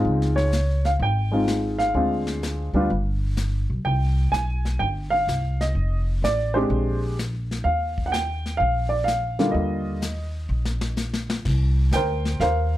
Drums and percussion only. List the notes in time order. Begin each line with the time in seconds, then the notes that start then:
0.06 brush sweep
0.22 snare
0.38 snare
0.53 snare, hi-hat pedal
0.85 snare
1.01 brush sweep
1.47 snare, hi-hat pedal
1.79 snare
1.95 brush sweep
2.27 snare
2.43 snare, hi-hat pedal
2.90 brush sweep
3.37 snare, hi-hat pedal
3.86 brush sweep
4.34 snare, hi-hat pedal
4.65 snare
4.81 brush sweep
5.28 snare, hi-hat pedal
5.61 snare
5.77 brush sweep
6.24 snare, hi-hat pedal
6.72 brush sweep
7.19 snare, hi-hat pedal
7.51 snare
7.67 brush sweep
7.98 kick
8.13 snare, hi-hat pedal
8.46 snare
8.61 brush sweep
9.07 snare, hi-hat pedal
9.39 snare
9.54 brush sweep
10.02 snare, hi-hat pedal
10.65 snare
10.81 snare
10.97 snare, hi-hat pedal
11.13 snare
11.30 snare
11.45 brush sweep, kick, snare, crash
11.92 snare, hi-hat pedal
12.25 snare
12.41 brush sweep, snare